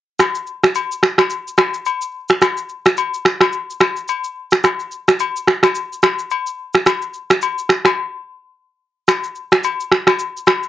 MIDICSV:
0, 0, Header, 1, 2, 480
1, 0, Start_track
1, 0, Tempo, 555556
1, 168, Time_signature, 4, 2, 24, 8
1, 9233, End_track
2, 0, Start_track
2, 0, Title_t, "Drums"
2, 166, Note_on_c, 9, 82, 84
2, 167, Note_on_c, 9, 37, 90
2, 171, Note_on_c, 9, 67, 73
2, 173, Note_on_c, 9, 26, 75
2, 252, Note_off_c, 9, 82, 0
2, 254, Note_off_c, 9, 37, 0
2, 258, Note_off_c, 9, 67, 0
2, 260, Note_off_c, 9, 26, 0
2, 301, Note_on_c, 9, 82, 56
2, 387, Note_off_c, 9, 82, 0
2, 404, Note_on_c, 9, 82, 45
2, 490, Note_off_c, 9, 82, 0
2, 548, Note_on_c, 9, 37, 101
2, 548, Note_on_c, 9, 82, 55
2, 554, Note_on_c, 9, 26, 83
2, 635, Note_off_c, 9, 37, 0
2, 635, Note_off_c, 9, 82, 0
2, 641, Note_off_c, 9, 26, 0
2, 646, Note_on_c, 9, 82, 75
2, 653, Note_on_c, 9, 67, 71
2, 732, Note_off_c, 9, 82, 0
2, 740, Note_off_c, 9, 67, 0
2, 791, Note_on_c, 9, 82, 57
2, 877, Note_off_c, 9, 82, 0
2, 888, Note_on_c, 9, 37, 89
2, 894, Note_on_c, 9, 26, 72
2, 974, Note_off_c, 9, 37, 0
2, 980, Note_off_c, 9, 26, 0
2, 1021, Note_on_c, 9, 37, 97
2, 1025, Note_on_c, 9, 82, 53
2, 1027, Note_on_c, 9, 26, 74
2, 1028, Note_on_c, 9, 67, 76
2, 1107, Note_off_c, 9, 37, 0
2, 1112, Note_off_c, 9, 82, 0
2, 1113, Note_off_c, 9, 26, 0
2, 1115, Note_off_c, 9, 67, 0
2, 1124, Note_on_c, 9, 82, 70
2, 1210, Note_off_c, 9, 82, 0
2, 1276, Note_on_c, 9, 82, 51
2, 1362, Note_off_c, 9, 82, 0
2, 1362, Note_on_c, 9, 82, 53
2, 1364, Note_on_c, 9, 67, 76
2, 1365, Note_on_c, 9, 37, 102
2, 1371, Note_on_c, 9, 26, 79
2, 1448, Note_off_c, 9, 82, 0
2, 1450, Note_off_c, 9, 67, 0
2, 1452, Note_off_c, 9, 37, 0
2, 1458, Note_off_c, 9, 26, 0
2, 1503, Note_on_c, 9, 82, 51
2, 1589, Note_off_c, 9, 82, 0
2, 1603, Note_on_c, 9, 82, 69
2, 1612, Note_on_c, 9, 67, 68
2, 1689, Note_off_c, 9, 82, 0
2, 1698, Note_off_c, 9, 67, 0
2, 1741, Note_on_c, 9, 82, 57
2, 1827, Note_off_c, 9, 82, 0
2, 1976, Note_on_c, 9, 82, 53
2, 1986, Note_on_c, 9, 37, 78
2, 1992, Note_on_c, 9, 26, 62
2, 2062, Note_off_c, 9, 82, 0
2, 2072, Note_off_c, 9, 37, 0
2, 2078, Note_off_c, 9, 26, 0
2, 2087, Note_on_c, 9, 82, 79
2, 2088, Note_on_c, 9, 37, 94
2, 2091, Note_on_c, 9, 67, 76
2, 2094, Note_on_c, 9, 26, 77
2, 2173, Note_off_c, 9, 82, 0
2, 2175, Note_off_c, 9, 37, 0
2, 2177, Note_off_c, 9, 67, 0
2, 2181, Note_off_c, 9, 26, 0
2, 2222, Note_on_c, 9, 82, 56
2, 2309, Note_off_c, 9, 82, 0
2, 2325, Note_on_c, 9, 82, 46
2, 2412, Note_off_c, 9, 82, 0
2, 2470, Note_on_c, 9, 37, 101
2, 2470, Note_on_c, 9, 82, 57
2, 2476, Note_on_c, 9, 26, 84
2, 2556, Note_off_c, 9, 37, 0
2, 2556, Note_off_c, 9, 82, 0
2, 2562, Note_off_c, 9, 26, 0
2, 2568, Note_on_c, 9, 82, 73
2, 2575, Note_on_c, 9, 67, 72
2, 2654, Note_off_c, 9, 82, 0
2, 2661, Note_off_c, 9, 67, 0
2, 2712, Note_on_c, 9, 82, 54
2, 2798, Note_off_c, 9, 82, 0
2, 2809, Note_on_c, 9, 37, 90
2, 2815, Note_on_c, 9, 26, 74
2, 2896, Note_off_c, 9, 37, 0
2, 2902, Note_off_c, 9, 26, 0
2, 2942, Note_on_c, 9, 37, 102
2, 2947, Note_on_c, 9, 82, 54
2, 2948, Note_on_c, 9, 26, 77
2, 2950, Note_on_c, 9, 67, 77
2, 3029, Note_off_c, 9, 37, 0
2, 3033, Note_off_c, 9, 82, 0
2, 3035, Note_off_c, 9, 26, 0
2, 3036, Note_off_c, 9, 67, 0
2, 3046, Note_on_c, 9, 82, 68
2, 3132, Note_off_c, 9, 82, 0
2, 3199, Note_on_c, 9, 82, 51
2, 3284, Note_off_c, 9, 82, 0
2, 3284, Note_on_c, 9, 82, 53
2, 3288, Note_on_c, 9, 37, 96
2, 3288, Note_on_c, 9, 67, 78
2, 3294, Note_on_c, 9, 26, 81
2, 3371, Note_off_c, 9, 82, 0
2, 3374, Note_off_c, 9, 37, 0
2, 3375, Note_off_c, 9, 67, 0
2, 3380, Note_off_c, 9, 26, 0
2, 3425, Note_on_c, 9, 82, 53
2, 3511, Note_off_c, 9, 82, 0
2, 3526, Note_on_c, 9, 82, 68
2, 3535, Note_on_c, 9, 67, 69
2, 3612, Note_off_c, 9, 82, 0
2, 3621, Note_off_c, 9, 67, 0
2, 3664, Note_on_c, 9, 82, 55
2, 3750, Note_off_c, 9, 82, 0
2, 3897, Note_on_c, 9, 82, 54
2, 3908, Note_on_c, 9, 37, 82
2, 3913, Note_on_c, 9, 26, 65
2, 3984, Note_off_c, 9, 82, 0
2, 3994, Note_off_c, 9, 37, 0
2, 4000, Note_off_c, 9, 26, 0
2, 4007, Note_on_c, 9, 82, 85
2, 4009, Note_on_c, 9, 37, 88
2, 4013, Note_on_c, 9, 67, 73
2, 4015, Note_on_c, 9, 26, 74
2, 4094, Note_off_c, 9, 82, 0
2, 4095, Note_off_c, 9, 37, 0
2, 4099, Note_off_c, 9, 67, 0
2, 4101, Note_off_c, 9, 26, 0
2, 4143, Note_on_c, 9, 82, 56
2, 4229, Note_off_c, 9, 82, 0
2, 4245, Note_on_c, 9, 82, 46
2, 4332, Note_off_c, 9, 82, 0
2, 4390, Note_on_c, 9, 37, 105
2, 4390, Note_on_c, 9, 82, 55
2, 4396, Note_on_c, 9, 26, 81
2, 4476, Note_off_c, 9, 37, 0
2, 4476, Note_off_c, 9, 82, 0
2, 4482, Note_off_c, 9, 26, 0
2, 4487, Note_on_c, 9, 82, 78
2, 4496, Note_on_c, 9, 67, 72
2, 4574, Note_off_c, 9, 82, 0
2, 4583, Note_off_c, 9, 67, 0
2, 4633, Note_on_c, 9, 82, 53
2, 4720, Note_off_c, 9, 82, 0
2, 4730, Note_on_c, 9, 37, 89
2, 4736, Note_on_c, 9, 26, 70
2, 4816, Note_off_c, 9, 37, 0
2, 4822, Note_off_c, 9, 26, 0
2, 4863, Note_on_c, 9, 37, 100
2, 4867, Note_on_c, 9, 82, 55
2, 4868, Note_on_c, 9, 26, 78
2, 4872, Note_on_c, 9, 67, 78
2, 4949, Note_off_c, 9, 37, 0
2, 4953, Note_off_c, 9, 82, 0
2, 4955, Note_off_c, 9, 26, 0
2, 4959, Note_off_c, 9, 67, 0
2, 4966, Note_on_c, 9, 82, 68
2, 5053, Note_off_c, 9, 82, 0
2, 5119, Note_on_c, 9, 82, 51
2, 5206, Note_off_c, 9, 82, 0
2, 5206, Note_on_c, 9, 82, 52
2, 5209, Note_on_c, 9, 37, 98
2, 5210, Note_on_c, 9, 67, 80
2, 5215, Note_on_c, 9, 26, 81
2, 5292, Note_off_c, 9, 82, 0
2, 5295, Note_off_c, 9, 37, 0
2, 5297, Note_off_c, 9, 67, 0
2, 5301, Note_off_c, 9, 26, 0
2, 5345, Note_on_c, 9, 82, 52
2, 5432, Note_off_c, 9, 82, 0
2, 5447, Note_on_c, 9, 82, 72
2, 5456, Note_on_c, 9, 67, 69
2, 5533, Note_off_c, 9, 82, 0
2, 5543, Note_off_c, 9, 67, 0
2, 5585, Note_on_c, 9, 82, 58
2, 5671, Note_off_c, 9, 82, 0
2, 5817, Note_on_c, 9, 82, 52
2, 5828, Note_on_c, 9, 37, 85
2, 5834, Note_on_c, 9, 26, 64
2, 5904, Note_off_c, 9, 82, 0
2, 5914, Note_off_c, 9, 37, 0
2, 5920, Note_off_c, 9, 26, 0
2, 5927, Note_on_c, 9, 82, 82
2, 5929, Note_on_c, 9, 37, 90
2, 5933, Note_on_c, 9, 67, 73
2, 5934, Note_on_c, 9, 26, 73
2, 6013, Note_off_c, 9, 82, 0
2, 6015, Note_off_c, 9, 37, 0
2, 6019, Note_off_c, 9, 67, 0
2, 6021, Note_off_c, 9, 26, 0
2, 6062, Note_on_c, 9, 82, 60
2, 6149, Note_off_c, 9, 82, 0
2, 6164, Note_on_c, 9, 82, 44
2, 6250, Note_off_c, 9, 82, 0
2, 6308, Note_on_c, 9, 37, 101
2, 6308, Note_on_c, 9, 82, 58
2, 6314, Note_on_c, 9, 26, 86
2, 6394, Note_off_c, 9, 37, 0
2, 6394, Note_off_c, 9, 82, 0
2, 6400, Note_off_c, 9, 26, 0
2, 6406, Note_on_c, 9, 82, 72
2, 6417, Note_on_c, 9, 67, 70
2, 6493, Note_off_c, 9, 82, 0
2, 6503, Note_off_c, 9, 67, 0
2, 6550, Note_on_c, 9, 82, 56
2, 6636, Note_off_c, 9, 82, 0
2, 6646, Note_on_c, 9, 37, 89
2, 6648, Note_on_c, 9, 82, 56
2, 6652, Note_on_c, 9, 26, 72
2, 6732, Note_off_c, 9, 37, 0
2, 6735, Note_off_c, 9, 82, 0
2, 6738, Note_off_c, 9, 26, 0
2, 6780, Note_on_c, 9, 37, 94
2, 6784, Note_on_c, 9, 82, 53
2, 6786, Note_on_c, 9, 26, 80
2, 6792, Note_on_c, 9, 67, 76
2, 6866, Note_off_c, 9, 37, 0
2, 6871, Note_off_c, 9, 82, 0
2, 6872, Note_off_c, 9, 26, 0
2, 6878, Note_off_c, 9, 67, 0
2, 7845, Note_on_c, 9, 82, 81
2, 7847, Note_on_c, 9, 37, 89
2, 7852, Note_on_c, 9, 67, 73
2, 7853, Note_on_c, 9, 26, 76
2, 7931, Note_off_c, 9, 82, 0
2, 7933, Note_off_c, 9, 37, 0
2, 7938, Note_off_c, 9, 67, 0
2, 7939, Note_off_c, 9, 26, 0
2, 7981, Note_on_c, 9, 82, 58
2, 8067, Note_off_c, 9, 82, 0
2, 8082, Note_on_c, 9, 82, 46
2, 8169, Note_off_c, 9, 82, 0
2, 8226, Note_on_c, 9, 37, 102
2, 8226, Note_on_c, 9, 82, 57
2, 8232, Note_on_c, 9, 26, 84
2, 8312, Note_off_c, 9, 37, 0
2, 8313, Note_off_c, 9, 82, 0
2, 8318, Note_off_c, 9, 26, 0
2, 8325, Note_on_c, 9, 82, 73
2, 8334, Note_on_c, 9, 67, 73
2, 8412, Note_off_c, 9, 82, 0
2, 8421, Note_off_c, 9, 67, 0
2, 8470, Note_on_c, 9, 82, 54
2, 8556, Note_off_c, 9, 82, 0
2, 8568, Note_on_c, 9, 37, 91
2, 8573, Note_on_c, 9, 26, 71
2, 8654, Note_off_c, 9, 37, 0
2, 8660, Note_off_c, 9, 26, 0
2, 8700, Note_on_c, 9, 37, 99
2, 8705, Note_on_c, 9, 82, 54
2, 8706, Note_on_c, 9, 26, 81
2, 8710, Note_on_c, 9, 67, 75
2, 8786, Note_off_c, 9, 37, 0
2, 8791, Note_off_c, 9, 82, 0
2, 8792, Note_off_c, 9, 26, 0
2, 8797, Note_off_c, 9, 67, 0
2, 8805, Note_on_c, 9, 82, 70
2, 8891, Note_off_c, 9, 82, 0
2, 8958, Note_on_c, 9, 82, 50
2, 9044, Note_off_c, 9, 82, 0
2, 9044, Note_on_c, 9, 82, 56
2, 9045, Note_on_c, 9, 67, 76
2, 9048, Note_on_c, 9, 37, 98
2, 9054, Note_on_c, 9, 26, 79
2, 9131, Note_off_c, 9, 82, 0
2, 9132, Note_off_c, 9, 67, 0
2, 9134, Note_off_c, 9, 37, 0
2, 9140, Note_off_c, 9, 26, 0
2, 9184, Note_on_c, 9, 82, 51
2, 9233, Note_off_c, 9, 82, 0
2, 9233, End_track
0, 0, End_of_file